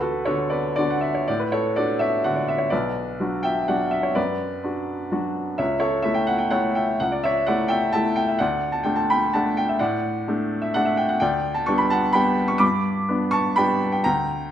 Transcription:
upright piano
Already playing: D2 F#4 B4
0.01 F#4 A4
0.25 D3 D4 F#4 A4 C#5
0.50 B4 D5
0.76 D3 D4 F#4 D5
0.90 F#5
1.01 E5
1.15 C#5
1.28 A2 D5
1.39 B4
1.52 A4 C#5
1.76 D4 F#4 A4 D5
1.99 C#5 E5
2.24 D3 D4 F#4 F#5
2.36 D5
2.48 E5
2.58 C#5
2.70 B1 B4 D5
3.20 F#3 D4 F#4
3.43 E5 G5
3.68 F#3 D4 F#4 D5 F#5
3.91 E5
4.03 C#5
4.15 F#2 B4 D5
4.64 D4 F#4
5.12 F#3 D4 F#4
5.58 C#2 C#5 E5
5.80 A4 C#5
6.02 A3 E4 E5
6.14 G5
6.27 F#5
6.38 G5
6.50 A3 E4 C#5 F#5
6.75 E5 G5
7.00 C#2 F#5
7.12 D5
7.24 C#5 E5
7.47 A3 E4 D5 F#5
7.68 E5 G5
7.93 A3 E4 E5 A5
8.16 G5
8.28 E5
8.39 D2 D5 F#5
8.72 A5
8.83 A3 D4 G5
8.96 A5
9.10 G5 B5
9.33 A3 D4 F#5 A5
9.57 G5
9.69 E5
9.79 A2 D5 F#5
10.28 A3 D4
10.62 E5
10.74 A3 D4 F#5
10.85 E5
10.97 G5
11.09 F#5
11.20 D2 D5 G5
11.54 A5
11.66 G3 B3 D4 C#6
11.78 B5
11.90 F#5 A5
12.13 G3 B3 D4 G5 B5
12.48 C#6
12.58 G2 B5 D6
13.09 B3 D4
13.31 A5 C#6
13.56 G3 B3 D4 G5 B5
13.92 G5
14.04 D2 G5 A#5

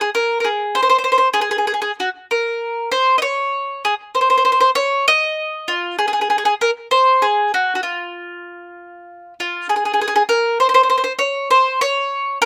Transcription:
mandolin
0.01 G#4
0.15 A#4
0.40 A#4
0.44 G#4
0.75 C5
0.83 C5
0.89 C5
0.98 C5
1.04 C5
1.12 C5
1.18 C5
1.34 G#4
1.41 G#4
1.51 G#4
1.58 G#4
1.67 G#4
1.74 G#4
1.82 G#4
2.00 F#4
2.31 A#4
2.92 C5
3.18 C#5 D#5
3.85 G#4
4.15 C5
4.21 C5
4.30 C5
4.37 C5
4.45 C5
4.52 C5
4.60 C5
4.75 C#5
5.08 D#5
5.68 F4
5.99 G#4
6.08 G#4
6.13 G#4
6.21 G#4
6.30 G#4
6.38 G#4
6.45 G#4
6.61 A#4
6.91 C5
7.22 G#4
7.54 F#4
7.75 F#4
7.83 F4
9.40 F4
9.69 G#4
9.76 G#4
9.85 G#4
9.94 G#4
10.01 G#4
10.08 G#4
10.16 G#4
10.29 A#4
10.60 C5
10.69 C5
10.74 C5
10.83 C5
10.90 C5
10.98 C5
11.04 C5
11.19 C#5
11.51 C5
11.81 C#5
12.42 A#4

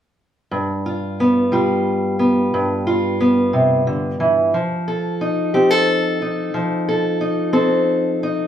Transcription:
steel-string acoustic guitar
0.51 G2
0.86 F4
1.20 B3
1.52 G3 F4
2.19 B3
2.54 G2
2.87 F4
3.20 B3
3.53 C3
3.87 D3
4.20 E3
4.54 F3
4.88 A4
5.21 D#4
5.54 C4 G4
5.71 A4
6.22 D#4
6.54 F3
6.88 A4
7.21 D#4
7.53 C4 A4
8.23 D#4

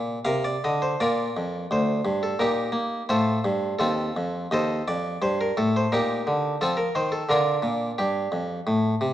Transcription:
harpsichord
Already playing: A#2 A#3 G4
0.25 C3 A#4 F5
0.44 D5
0.64 D3 D#5
0.82 C5
1.00 A#2 F4 A#4 D5
1.37 F2
1.71 D2 C5
2.05 G2
2.23 A4
2.39 A#2 D#4 G4 A#4
2.72 A#3
3.09 A2 F4 A4 C5
3.44 G2
3.79 D#2 C4 F4 A4
4.17 F2
4.51 D#2 A4 C5 D#5
4.88 F2 D5
5.22 G2 C5
5.41 A#4
5.57 A2 A4
5.76 C5
5.92 A#2 D#4 G4 A#4
6.27 D3
6.61 F3 C4 F4 A4
6.77 A#4
6.95 D#3 C5
7.12 A4
7.29 D3 D4 F4 A#4
7.62 A#2
7.98 G2 G4
8.32 F2
8.67 A2
9.01 C3

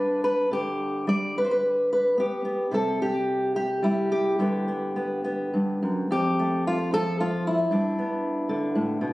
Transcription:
steel-string acoustic guitar
Already playing: G2 D4 B4
0.24 B4
0.51 D3 G4
1.07 G3 D5
1.38 B4
1.45 C5
1.51 B4
1.93 B4
2.18 B3 G4
2.45 B3
2.71 C3 G3 A4
3.02 G4
3.56 G4
3.83 G3 E4
4.12 G4
4.39 G2 D3 B3
4.68 B3
4.96 B3
5.24 B3
5.54 G2
5.83 F#2
6.11 F2 G4
6.39 A3
6.67 F4
6.93 F3 A4
7.20 F4
7.47 E4
7.71 G2 D4
7.99 B3
8.49 D3
8.75 A2
9.01 B2

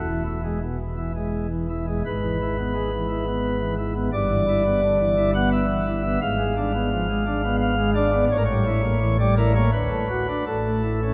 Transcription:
pipe organ
Already playing: E1 E2 E4
0.08 E3
0.25 E4
0.44 G#3
0.62 B2
0.80 E3
0.97 E4
1.15 G#3
1.51 E3
1.69 E4
1.87 G#3
2.05 G#1 G#2 B4
2.23 E3
2.41 E4
2.58 B3
2.75 G#3
2.92 E3
3.09 E4
3.27 B3
3.61 E3
3.78 E4
3.95 B3
4.12 G1 G2 D5
4.30 E3
4.48 E4
4.65 B3
4.82 D3
5.00 E3
5.17 E4
5.34 B3 F#5
5.52 E5
5.69 E3
5.86 E4
6.04 B3
6.21 G#1 G#2 F5
6.38 G#3
6.57 D4
6.74 B3
6.91 F3
7.09 G#3
7.26 D4
7.44 B3
7.61 F5
7.78 G#3
7.95 D4 D5
8.13 B3
8.31 A1 A2 C#5
8.37 A#4
8.45 G3 C#5
8.66 E4
8.83 A#3
9.01 E3
9.19 G3 D5
9.37 E4 A#4
9.55 A#3 C#5
9.72 D2 D3 B4
9.91 A3
10.09 F#4
10.28 D4
10.46 A1 A2 A4
10.65 A3
10.83 E4
11.03 C#4

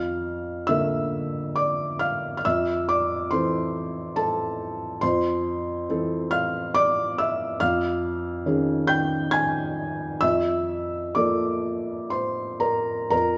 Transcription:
felt piano
Already playing: F2 F5 F6
0.67 D3 A#3 A4 E5 E6
1.56 D5 D6
1.99 F5 F6
2.37 F6
2.45 F2 E5 E6
2.89 D5 D6
3.31 E3 C4 A4 C5 C6
4.16 A4 A5
5.01 F2 C5 C6
5.90 E3 C4 A4
6.31 F5 F6
6.75 D5 D6
7.18 E5 E6
7.60 F2 F5 F6
8.46 D#3 C#4 G#4
8.87 G5 G6
9.31 G#5 G#6
10.21 F2 E5 E6
11.15 F3 A#3 A4 D5 D6
12.10 C5 C6
12.60 A#4 A#5
13.10 F2 A#4 A#5

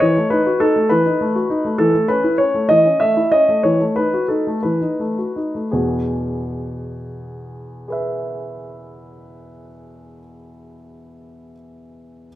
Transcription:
grand piano
0.00 E3 C#5
0.17 A3
0.30 D#4 B4
0.46 F#4
0.60 D#4 A4
0.76 A3
0.89 E3 B4
1.06 D#4
1.21 A3
1.35 F#4
1.50 D#4
1.65 A3
1.78 E3 A4
1.94 A3
2.08 C#4 B4
2.24 E4
2.38 C#4 C#5
2.54 A3
2.69 E3 D#5
2.86 C#4
3.00 A3 E5
3.17 E4
3.32 C#4 D#5
3.49 A3
3.63 E3 C#5
3.80 A3
3.96 D#4 B4
4.14 F#4
4.28 D#4 A4
4.47 A3
4.63 E3 B4
4.82 D#4
5.00 A3
5.18 F#4
5.36 D#4
5.55 A3
5.71 E2 B2 G#4
7.88 G#4 B4
7.92 E5

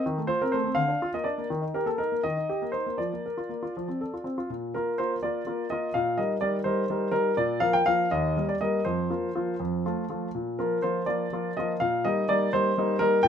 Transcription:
grand piano
0.06 D#3
0.18 A3
0.27 F4 C5
0.42 C4 A#4
0.52 A3 C5
0.64 C4
0.75 D3 F5
0.88 D4
1.02 F4
1.14 A#3 D#5
1.24 D4 D5
1.38 A#3
1.50 D#3
1.62 D#4
1.74 G4 A#4
1.86 A#3 A4
1.98 D#4 A#4
2.12 A#3
2.23 D#3 D#5
2.37 D#4
2.49 G4
2.62 A#3
2.72 D#4 C5
2.86 A#3
2.98 F3 D5
3.13 A#3
3.26 A#4
3.38 F4
3.49 A#3
3.63 F4
3.77 F3
3.88 C4
4.01 A4
4.14 F4
4.24 C4
4.38 F4
4.50 A#2
4.74 A#3 F4 A#4
4.98 A#3 F4 A#4 C5
5.23 A#3 F4 A#4 D5
5.47 A#3 F4 A#4
5.70 A#3 F4 A#4 D#5
5.94 A#2 F5
6.18 G3 D#4 A#4 D#5
6.41 G3 D#4 A#4 D5
6.64 G3 D#4 A#4 C5
6.90 G3 D#4 A#4
7.12 G3 D#4 A#4
7.37 A#2 D5
7.60 F3 A#3 A#4 F5
7.73 G5
7.86 F3 A#3 A#4 F5
8.11 D#2 D#5
8.37 G3 A#3 A#4
8.49 D5
8.61 G3 A#3 A#4 D#5
8.85 F2 C5
9.09 F3 A#3 F4
9.35 F3 A#3 F4
9.60 F2
9.86 F3 A3 F4
10.09 F3 A3 F4
10.35 A#2
10.59 F3 A#3 F4 A#4
10.82 F3 A#3 F4 C5
11.06 F3 A#3 F4 D5
11.32 F3 A#3 F4
11.57 F3 A#3 F4 D#5
11.80 A#2 F5
12.05 G3 A#3 D#4 D#5
12.29 G3 A#3 D#4 D5
12.53 G3 A#3 D#4 C5
12.78 G3 A#3 D#4
12.99 G3 A#3 D#4 A#4
13.23 A#2 G5

